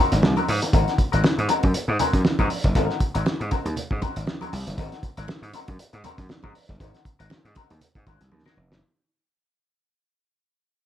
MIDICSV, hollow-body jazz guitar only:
0, 0, Header, 1, 3, 480
1, 0, Start_track
1, 0, Tempo, 505902
1, 699, Time_signature, 4, 2, 24, 8
1, 10297, End_track
2, 0, Start_track
2, 0, Title_t, "Hollow-body jazz guitar"
2, 0, Program_c, 0, 26
2, 0, Note_on_c, 0, 56, 77
2, 0, Note_on_c, 0, 60, 82
2, 0, Note_on_c, 0, 66, 92
2, 0, Note_on_c, 0, 70, 100
2, 107, Note_off_c, 0, 70, 0
2, 112, Note_off_c, 0, 66, 0
2, 118, Note_off_c, 0, 60, 0
2, 153, Note_off_c, 0, 56, 0
2, 352, Note_on_c, 0, 70, 81
2, 357, Note_on_c, 0, 66, 72
2, 362, Note_on_c, 0, 60, 70
2, 365, Note_on_c, 0, 56, 64
2, 444, Note_off_c, 0, 56, 0
2, 450, Note_off_c, 0, 60, 0
2, 452, Note_off_c, 0, 66, 0
2, 452, Note_off_c, 0, 70, 0
2, 694, Note_on_c, 0, 56, 78
2, 699, Note_on_c, 0, 60, 87
2, 701, Note_on_c, 0, 66, 102
2, 706, Note_on_c, 0, 70, 103
2, 869, Note_off_c, 0, 56, 0
2, 872, Note_off_c, 0, 60, 0
2, 873, Note_off_c, 0, 66, 0
2, 875, Note_off_c, 0, 70, 0
2, 1065, Note_on_c, 0, 70, 80
2, 1071, Note_on_c, 0, 66, 66
2, 1076, Note_on_c, 0, 60, 72
2, 1079, Note_on_c, 0, 56, 59
2, 1162, Note_off_c, 0, 56, 0
2, 1165, Note_off_c, 0, 60, 0
2, 1167, Note_off_c, 0, 66, 0
2, 1172, Note_off_c, 0, 70, 0
2, 1408, Note_on_c, 0, 56, 79
2, 1413, Note_on_c, 0, 60, 79
2, 1419, Note_on_c, 0, 66, 86
2, 1422, Note_on_c, 0, 70, 100
2, 1536, Note_off_c, 0, 70, 0
2, 1538, Note_off_c, 0, 66, 0
2, 1545, Note_off_c, 0, 60, 0
2, 1585, Note_off_c, 0, 56, 0
2, 1893, Note_on_c, 0, 56, 89
2, 1896, Note_on_c, 0, 60, 87
2, 1899, Note_on_c, 0, 66, 84
2, 1905, Note_on_c, 0, 70, 94
2, 2016, Note_off_c, 0, 70, 0
2, 2022, Note_off_c, 0, 66, 0
2, 2025, Note_off_c, 0, 60, 0
2, 2068, Note_off_c, 0, 56, 0
2, 2273, Note_on_c, 0, 70, 89
2, 2277, Note_on_c, 0, 66, 83
2, 2280, Note_on_c, 0, 60, 73
2, 2284, Note_on_c, 0, 56, 83
2, 2363, Note_off_c, 0, 56, 0
2, 2366, Note_off_c, 0, 60, 0
2, 2370, Note_off_c, 0, 66, 0
2, 2373, Note_off_c, 0, 70, 0
2, 2610, Note_on_c, 0, 56, 88
2, 2616, Note_on_c, 0, 60, 101
2, 2618, Note_on_c, 0, 66, 106
2, 2624, Note_on_c, 0, 70, 117
2, 2808, Note_off_c, 0, 56, 0
2, 2811, Note_off_c, 0, 60, 0
2, 2812, Note_off_c, 0, 66, 0
2, 2815, Note_off_c, 0, 70, 0
2, 2984, Note_on_c, 0, 70, 62
2, 2987, Note_on_c, 0, 66, 63
2, 2994, Note_on_c, 0, 60, 62
2, 2996, Note_on_c, 0, 56, 58
2, 3079, Note_off_c, 0, 56, 0
2, 3082, Note_off_c, 0, 60, 0
2, 3087, Note_off_c, 0, 66, 0
2, 3089, Note_off_c, 0, 70, 0
2, 3331, Note_on_c, 0, 56, 76
2, 3334, Note_on_c, 0, 60, 90
2, 3340, Note_on_c, 0, 66, 89
2, 3343, Note_on_c, 0, 70, 101
2, 3457, Note_off_c, 0, 70, 0
2, 3462, Note_off_c, 0, 66, 0
2, 3466, Note_off_c, 0, 60, 0
2, 3506, Note_off_c, 0, 56, 0
2, 3812, Note_on_c, 0, 56, 91
2, 3817, Note_on_c, 0, 60, 94
2, 3821, Note_on_c, 0, 66, 104
2, 3825, Note_on_c, 0, 70, 97
2, 3938, Note_off_c, 0, 70, 0
2, 3943, Note_off_c, 0, 66, 0
2, 3947, Note_off_c, 0, 60, 0
2, 3986, Note_off_c, 0, 56, 0
2, 4189, Note_on_c, 0, 70, 82
2, 4195, Note_on_c, 0, 66, 81
2, 4199, Note_on_c, 0, 60, 73
2, 4203, Note_on_c, 0, 56, 68
2, 4288, Note_off_c, 0, 56, 0
2, 4291, Note_off_c, 0, 60, 0
2, 4294, Note_off_c, 0, 66, 0
2, 4298, Note_off_c, 0, 70, 0
2, 4533, Note_on_c, 0, 56, 95
2, 4538, Note_on_c, 0, 60, 106
2, 4545, Note_on_c, 0, 66, 103
2, 4546, Note_on_c, 0, 70, 100
2, 4706, Note_off_c, 0, 56, 0
2, 4709, Note_off_c, 0, 60, 0
2, 4713, Note_off_c, 0, 66, 0
2, 4713, Note_off_c, 0, 70, 0
2, 4909, Note_on_c, 0, 70, 66
2, 4916, Note_on_c, 0, 66, 57
2, 4921, Note_on_c, 0, 60, 58
2, 4923, Note_on_c, 0, 56, 51
2, 5005, Note_off_c, 0, 56, 0
2, 5009, Note_off_c, 0, 60, 0
2, 5012, Note_off_c, 0, 66, 0
2, 5014, Note_off_c, 0, 70, 0
2, 5258, Note_on_c, 0, 56, 79
2, 5263, Note_on_c, 0, 60, 90
2, 5268, Note_on_c, 0, 66, 97
2, 5272, Note_on_c, 0, 70, 92
2, 5383, Note_off_c, 0, 70, 0
2, 5390, Note_off_c, 0, 66, 0
2, 5393, Note_off_c, 0, 60, 0
2, 5429, Note_off_c, 0, 56, 0
2, 5735, Note_on_c, 0, 56, 91
2, 5740, Note_on_c, 0, 60, 106
2, 5743, Note_on_c, 0, 66, 101
2, 5748, Note_on_c, 0, 70, 104
2, 5859, Note_off_c, 0, 70, 0
2, 5864, Note_off_c, 0, 66, 0
2, 5867, Note_off_c, 0, 60, 0
2, 5907, Note_off_c, 0, 56, 0
2, 6107, Note_on_c, 0, 70, 85
2, 6113, Note_on_c, 0, 66, 79
2, 6117, Note_on_c, 0, 60, 68
2, 6121, Note_on_c, 0, 56, 77
2, 6202, Note_off_c, 0, 56, 0
2, 6206, Note_off_c, 0, 60, 0
2, 6210, Note_off_c, 0, 66, 0
2, 6213, Note_off_c, 0, 70, 0
2, 6456, Note_on_c, 0, 56, 97
2, 6460, Note_on_c, 0, 60, 94
2, 6466, Note_on_c, 0, 66, 89
2, 6467, Note_on_c, 0, 70, 93
2, 6628, Note_off_c, 0, 56, 0
2, 6630, Note_off_c, 0, 60, 0
2, 6633, Note_off_c, 0, 66, 0
2, 6634, Note_off_c, 0, 70, 0
2, 6824, Note_on_c, 0, 70, 70
2, 6828, Note_on_c, 0, 66, 61
2, 6831, Note_on_c, 0, 60, 58
2, 6839, Note_on_c, 0, 56, 58
2, 6922, Note_off_c, 0, 56, 0
2, 6926, Note_off_c, 0, 60, 0
2, 6929, Note_off_c, 0, 66, 0
2, 6934, Note_off_c, 0, 70, 0
2, 7176, Note_on_c, 0, 56, 93
2, 7180, Note_on_c, 0, 60, 93
2, 7184, Note_on_c, 0, 66, 95
2, 7187, Note_on_c, 0, 70, 98
2, 7298, Note_off_c, 0, 70, 0
2, 7303, Note_off_c, 0, 66, 0
2, 7307, Note_off_c, 0, 60, 0
2, 7349, Note_off_c, 0, 56, 0
2, 7653, Note_on_c, 0, 56, 80
2, 7661, Note_on_c, 0, 60, 92
2, 7663, Note_on_c, 0, 66, 102
2, 7667, Note_on_c, 0, 70, 103
2, 7780, Note_off_c, 0, 70, 0
2, 7787, Note_off_c, 0, 66, 0
2, 7789, Note_off_c, 0, 60, 0
2, 7828, Note_off_c, 0, 56, 0
2, 8025, Note_on_c, 0, 70, 88
2, 8030, Note_on_c, 0, 66, 77
2, 8033, Note_on_c, 0, 60, 70
2, 8039, Note_on_c, 0, 56, 73
2, 8123, Note_off_c, 0, 56, 0
2, 8130, Note_off_c, 0, 60, 0
2, 8131, Note_off_c, 0, 66, 0
2, 8134, Note_off_c, 0, 70, 0
2, 10297, End_track
3, 0, Start_track
3, 0, Title_t, "Muted hollow-body jazz guitar strokes"
3, 119, Note_on_c, 9, 29, 42
3, 213, Note_off_c, 9, 29, 0
3, 221, Note_on_c, 9, 29, 41
3, 315, Note_off_c, 9, 29, 0
3, 455, Note_on_c, 9, 29, 42
3, 550, Note_off_c, 9, 29, 0
3, 594, Note_on_c, 9, 29, 59
3, 688, Note_off_c, 9, 29, 0
3, 934, Note_on_c, 9, 29, 45
3, 1028, Note_off_c, 9, 29, 0
3, 1173, Note_on_c, 9, 29, 40
3, 1268, Note_off_c, 9, 29, 0
3, 1306, Note_on_c, 9, 29, 43
3, 1401, Note_off_c, 9, 29, 0
3, 1548, Note_on_c, 9, 29, 51
3, 1643, Note_off_c, 9, 29, 0
3, 1653, Note_on_c, 9, 29, 45
3, 1748, Note_off_c, 9, 29, 0
3, 1787, Note_on_c, 9, 29, 49
3, 1882, Note_off_c, 9, 29, 0
3, 2028, Note_on_c, 9, 29, 50
3, 2123, Note_off_c, 9, 29, 0
3, 2135, Note_on_c, 9, 29, 44
3, 2230, Note_off_c, 9, 29, 0
3, 2375, Note_on_c, 9, 29, 46
3, 2470, Note_off_c, 9, 29, 0
3, 2509, Note_on_c, 9, 29, 58
3, 2603, Note_off_c, 9, 29, 0
3, 2857, Note_on_c, 9, 29, 44
3, 2952, Note_off_c, 9, 29, 0
3, 3091, Note_on_c, 9, 29, 45
3, 3185, Note_off_c, 9, 29, 0
3, 3226, Note_on_c, 9, 29, 44
3, 3321, Note_off_c, 9, 29, 0
3, 3469, Note_on_c, 9, 29, 49
3, 3564, Note_off_c, 9, 29, 0
3, 3572, Note_on_c, 9, 29, 40
3, 3667, Note_off_c, 9, 29, 0
3, 3707, Note_on_c, 9, 29, 50
3, 3802, Note_off_c, 9, 29, 0
3, 3949, Note_on_c, 9, 29, 46
3, 4044, Note_off_c, 9, 29, 0
3, 4054, Note_on_c, 9, 29, 43
3, 4149, Note_off_c, 9, 29, 0
3, 4299, Note_on_c, 9, 29, 42
3, 4394, Note_off_c, 9, 29, 0
3, 4429, Note_on_c, 9, 29, 54
3, 4524, Note_off_c, 9, 29, 0
3, 4777, Note_on_c, 9, 29, 51
3, 4872, Note_off_c, 9, 29, 0
3, 5016, Note_on_c, 9, 29, 47
3, 5111, Note_off_c, 9, 29, 0
3, 5150, Note_on_c, 9, 29, 51
3, 5245, Note_off_c, 9, 29, 0
3, 5394, Note_on_c, 9, 29, 42
3, 5489, Note_off_c, 9, 29, 0
3, 5495, Note_on_c, 9, 29, 45
3, 5590, Note_off_c, 9, 29, 0
3, 5627, Note_on_c, 9, 29, 56
3, 5722, Note_off_c, 9, 29, 0
3, 5870, Note_on_c, 9, 29, 55
3, 5965, Note_off_c, 9, 29, 0
3, 5971, Note_on_c, 9, 29, 43
3, 6065, Note_off_c, 9, 29, 0
3, 6213, Note_on_c, 9, 29, 52
3, 6308, Note_off_c, 9, 29, 0
3, 6348, Note_on_c, 9, 29, 52
3, 6443, Note_off_c, 9, 29, 0
3, 6692, Note_on_c, 9, 29, 42
3, 6786, Note_off_c, 9, 29, 0
3, 6933, Note_on_c, 9, 29, 49
3, 7028, Note_off_c, 9, 29, 0
3, 7070, Note_on_c, 9, 29, 46
3, 7164, Note_off_c, 9, 29, 0
3, 7310, Note_on_c, 9, 29, 54
3, 7404, Note_off_c, 9, 29, 0
3, 7413, Note_on_c, 9, 29, 52
3, 7508, Note_off_c, 9, 29, 0
3, 7549, Note_on_c, 9, 29, 43
3, 7644, Note_off_c, 9, 29, 0
3, 7791, Note_on_c, 9, 29, 57
3, 7886, Note_off_c, 9, 29, 0
3, 7894, Note_on_c, 9, 29, 42
3, 7989, Note_off_c, 9, 29, 0
3, 8135, Note_on_c, 9, 29, 43
3, 8230, Note_off_c, 9, 29, 0
3, 8269, Note_on_c, 9, 29, 39
3, 8364, Note_off_c, 9, 29, 0
3, 10297, End_track
0, 0, End_of_file